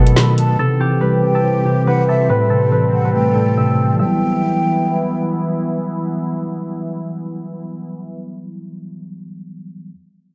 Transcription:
0.00 0.56 B2 loud
0.00 0.61 B2 medium
0.00 0.15 D#3 medium
0.00 0.57 D#3 medium
0.00 0.38 F#3 medium
0.00 0.59 A3 medium
0.00 0.57 B3 medium
0.00 0.59 B3 medium
0.00 0.61 G4 medium
0.00 0.57 A4 medium
0.00 0.59 A4 medium
0.00 1.00 B4 medium
0.00 0.13 F#5 medium
0.00 downlifter medium
0.07 closed hi-hat medium
0.16 0.59 D#3 medium
0.16 0.37 B5 medium
0.16 snare loud
0.38 0.58 A5 medium
0.38 closed hi-hat medium
0.59 1.64 C3 loud
0.59 2.28 E3 medium
0.59 3.96 C4 medium
0.59 2.28 G4 medium
0.59 1.34 A4 loud
0.80 1.85 E3 medium
0.80 1.65 G4 loud
1.01 2.08 G3 medium
1.01 1.87 B4 medium
1.23 2.29 C4 medium
1.23 1.83 G5 medium
1.35 2.08 A4 medium
1.44 2.29 C5 medium
1.65 2.29 C3 medium
1.65 4.01 G4 medium
1.87 2.29 E3 medium
1.87 2.29 B4 medium
1.87 2.07 F#5 medium
2.08 2.50 A4 medium
2.08 2.28 E5 medium
2.29 3.34 A2 loud
2.29 3.98 G3 medium
2.29 3.98 A4 medium
2.29 2.72 B4 loud
2.50 3.56 C3 medium
2.50 3.35 A4 medium
2.72 3.78 E3 medium
2.72 3.04 B4 medium
2.93 3.99 G3 medium
2.93 3.13 F#5 medium
3.05 5.10 B4 medium
3.14 3.99 A3 medium
3.14 3.96 G5 medium
3.35 3.99 A2 medium
3.35 5.55 A4 medium
3.57 3.99 C3 medium
3.57 3.99 E5 medium
3.93 8.83 E3 medium
3.97 8.16 E3 medium
3.97 8.85 F#3 medium
3.97 8.16 B3 medium
3.97 8.16 E4 medium
3.97 5.72 E5 medium
3.97 5.23 G5 medium
4.01 8.87 G3 medium
4.01 8.89 B3 medium

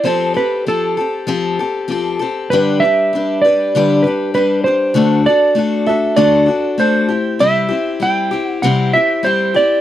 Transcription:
0.04 0.35 F3 medium
0.04 0.36 C4 medium
0.04 0.35 G4 medium
0.04 0.33 A4 medium
0.04 0.36 C5 medium
0.34 0.66 C4 soft
0.34 0.67 G4 soft
0.34 0.66 A4 soft
0.34 0.68 B4 medium
0.67 0.97 F3 medium
0.67 0.98 C4 medium
0.67 0.97 G4 medium
0.67 2.17 A4 medium
0.67 0.96 A4 medium
0.97 1.27 C4 soft
0.97 1.27 G4 soft
0.97 1.27 A4 medium
1.27 1.58 F3 medium
1.27 1.59 C4 medium
1.27 1.59 G4 medium
1.27 1.58 A4 medium
1.59 1.87 C4 soft
1.59 1.89 G4 medium
1.59 1.90 A4 medium
1.88 2.19 F3 medium
1.88 2.20 C4 medium
1.88 2.20 G4 medium
1.88 2.18 A4 medium
2.19 2.52 C4 soft
2.19 2.52 G4 soft
2.19 2.50 A4 medium
2.50 2.82 G2 medium
2.50 2.82 D3 medium
2.50 2.83 G3 medium
2.50 2.82 D4 medium
2.50 2.82 G4 medium
2.50 2.82 B4 medium
2.50 2.81 B4 medium
2.80 3.13 G4 soft
2.80 3.12 B4 soft
2.80 3.44 E5 medium
2.85 3.12 G3 soft
2.85 3.14 D4 soft
3.13 3.43 G3 soft
3.13 3.44 D4 medium
3.13 3.44 G4 medium
3.13 3.43 B4 medium
3.42 3.74 B4 medium
3.42 4.05 D5 medium
3.46 3.75 G3 soft
3.46 3.75 D4 soft
3.46 3.75 G4 soft
3.75 4.05 G2 medium
3.75 4.05 D3 medium
3.75 4.05 G3 medium
3.75 4.05 D4 medium
3.75 4.04 G4 medium
3.75 4.03 B4 medium
4.03 4.35 G4 soft
4.03 4.33 B4 medium
4.03 4.35 B4 medium
4.07 4.33 G3 soft
4.07 4.34 D4 soft
4.34 4.65 G3 medium
4.34 4.65 D4 medium
4.34 4.65 G4 medium
4.34 4.64 B4 medium
4.34 4.67 B4 medium
4.64 4.95 G3 soft
4.64 4.95 D4 soft
4.64 4.95 G4 soft
4.64 5.26 C5 medium
4.94 5.26 D3 medium
4.94 5.26 A3 medium
4.94 5.26 D4 medium
4.94 5.26 F#4 medium
4.94 5.25 A4 medium
5.26 5.55 D4 soft
5.26 5.57 F#4 soft
5.26 5.57 A4 medium
5.26 5.89 D5 loud
5.55 5.87 A3 medium
5.55 5.87 D4 medium
5.55 5.88 F#4 medium
5.55 5.85 A4 medium
5.86 6.16 D4 soft
5.86 6.16 F#4 soft
5.86 6.17 A4 medium
5.86 6.16 E5 medium
6.16 6.48 D3 medium
6.16 6.48 A3 medium
6.16 6.49 D4 loud
6.16 6.47 F#4 medium
6.16 6.45 A4 medium
6.16 6.81 D5 medium
6.46 6.78 D4 soft
6.46 6.79 F#4 soft
6.46 6.78 A4 medium
6.78 7.09 A3 medium
6.78 7.10 D4 medium
6.78 7.10 F#4 medium
6.78 7.08 A4 medium
6.78 7.43 C5 loud
7.09 7.39 C4 soft
7.09 7.40 E4 soft
7.09 7.40 G4 medium
7.39 7.71 C3 medium
7.39 7.71 G3 medium
7.39 7.71 C4 medium
7.39 7.69 E4 medium
7.39 7.67 G4 medium
7.39 8.04 E5 loud
7.68 8.00 C4 soft
7.68 8.01 E4 medium
7.68 8.01 G4 medium
8.00 8.32 G3 medium
8.00 8.32 C4 medium
8.00 8.31 E4 medium
8.00 8.30 G4 medium
8.00 8.48 G5 loud
8.31 8.63 C4 soft
8.31 8.63 E4 soft
8.31 8.63 G4 medium
8.48 8.62 F#5 loud
8.62 8.94 C3 medium
8.62 8.94 G3 medium
8.62 8.94 C4 medium
8.62 8.94 E4 medium
8.62 8.92 G4 medium
8.62 8.95 F#5 medium
8.93 9.23 C4 soft
8.93 9.24 E4 soft
8.93 9.24 G4 medium
8.93 9.25 E5 loud
9.23 9.55 G3 medium
9.23 9.55 C4 medium
9.23 9.56 E4 medium
9.23 9.53 G4 medium
9.23 9.56 C5 loud
9.54 9.81 C4 soft
9.54 9.81 E4 medium
9.54 9.81 G4 medium
9.54 9.81 D5 loud

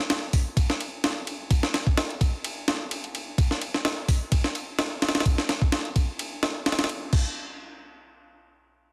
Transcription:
0.10 snare loud
0.10 ride medium
0.33 kick loud
0.33 open hi-hat medium
0.57 kick loud
0.57 ride medium
0.70 snare medium
0.81 ride medium
1.04 snare loud
1.04 ride medium
1.27 ride medium
1.51 kick loud
1.51 ride medium
1.63 snare medium
1.74 snare medium
1.74 ride medium
1.87 kick loud
1.97 snare loud
1.97 ride medium
2.10 ride soft
2.21 kick loud
2.21 ride medium
2.44 ride medium
2.68 snare loud
2.68 ride medium
2.91 ride medium
3.04 ride soft
3.15 ride medium
3.38 kick loud
3.38 ride medium
3.51 snare soft
3.62 ride medium
3.74 snare soft
3.85 snare loud
3.85 ride medium
4.08 kick loud
4.08 open hi-hat medium
4.32 kick loud
4.32 ride medium
4.44 snare medium
4.55 ride medium
4.79 snare loud
4.79 ride medium
5.02 snare medium
5.02 ride medium
5.09 snare medium
5.09 ride medium
5.15 snare medium
5.15 ride medium
5.20 snare medium
5.20 ride medium
5.26 kick loud
5.26 ride medium
5.38 snare medium
5.49 snare medium
5.49 ride medium
5.62 kick loud
5.72 snare loud
5.72 ride medium
5.85 ride soft
5.96 kick loud
5.96 ride medium
6.19 ride medium
6.43 snare loud
6.43 ride medium
6.66 snare medium
6.66 ride medium
6.72 snare medium
6.72 ride medium
6.79 snare medium
6.79 ride medium
6.84 snare medium
6.84 ride medium
6.89 ride medium
7.13 kick loud
7.13 crash medium

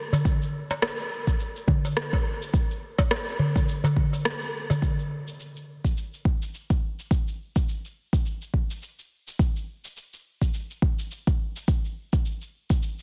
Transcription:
0.13 darbuka ka medium
0.13 darbuka dum medium
0.13 shaker medium
0.25 kick loud
0.25 shaker medium
0.42 shaker soft
0.71 darbuka ka medium
0.71 darbuka tek medium
0.71 shaker medium
0.82 cross-stick loud
0.82 darbuka tek medium
0.82 shaker soft
0.99 shaker soft
1.27 kick medium
1.27 darbuka ka soft
1.27 shaker medium
1.40 shaker medium
1.56 shaker soft
1.68 kick medium
1.68 darbuka dum medium
1.85 darbuka ka soft
1.85 shaker medium
1.97 cross-stick medium
1.97 shaker soft
2.13 kick medium
2.13 darbuka tek medium
2.13 shaker soft
2.42 shaker medium
2.54 kick loud
2.54 shaker medium
2.71 shaker soft
2.98 kick medium
2.98 darbuka ka medium
2.98 darbuka tek medium
2.98 shaker medium
3.11 cross-stick loud
3.11 darbuka tek medium
3.11 shaker soft
3.28 shaker soft
3.39 darbuka dum medium
3.55 kick medium
3.55 darbuka ka soft
3.55 shaker medium
3.69 shaker medium
3.84 darbuka ka medium
3.84 darbuka dum medium
3.84 shaker soft
3.97 kick medium
4.13 darbuka tek soft
4.13 shaker medium
4.25 cross-stick loud
4.25 shaker soft
4.42 shaker soft
4.70 darbuka ka medium
4.70 darbuka dum medium
4.70 shaker medium
4.82 kick loud
4.82 shaker soft
4.99 shaker soft
5.28 shaker medium
5.40 shaker soft
5.57 shaker soft
5.84 kick medium
5.84 shaker medium
5.97 shaker soft
6.14 shaker soft
6.25 kick medium
6.42 shaker medium
6.54 shaker soft
6.70 kick medium
6.70 shaker soft
6.99 shaker medium
7.11 kick loud
7.11 shaker medium
7.28 shaker soft
7.56 kick medium
7.56 shaker medium
7.69 shaker soft
7.85 shaker soft
8.13 kick medium
8.13 shaker medium
8.26 shaker medium
8.42 shaker soft
8.54 kick medium
8.71 shaker medium
8.83 shaker soft
8.99 shaker soft
9.28 shaker medium
9.39 kick loud
9.39 shaker medium
9.56 shaker soft
9.85 shaker medium
9.97 shaker medium
10.13 shaker soft
10.41 kick medium
10.41 shaker medium
10.54 shaker medium
10.71 shaker soft
10.82 kick loud
10.99 shaker medium
11.11 shaker medium
11.27 kick loud
11.27 shaker soft
11.56 shaker medium
11.68 kick loud
11.68 shaker medium
11.85 shaker soft
12.13 kick medium
12.13 shaker medium
12.25 shaker soft
12.42 shaker soft
12.70 kick medium
12.70 shaker medium
12.82 shaker medium
12.99 shaker soft

